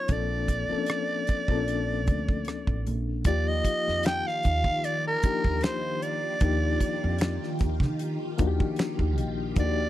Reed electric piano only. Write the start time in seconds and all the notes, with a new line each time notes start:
Already playing: F#3 B3 C#4 D#4 F4
0.09 F3 A#3 C4 D4 A4
0.69 F3 A#3 C4 C#4 A4
0.78 D4
1.48 F3 A#3 C4 C#4 A4
1.57 D4
3.25 F3 A#3 D#4 F4 G4
5.23 F3 A#3 D4 D#4 G4
6.41 F3 A#3 D4 D#4 G4
8.38 F3 A#3 D4 D#4 F#4
8.47 G4
9.56 F3 A#3 D4 D#4 F#4
9.66 G4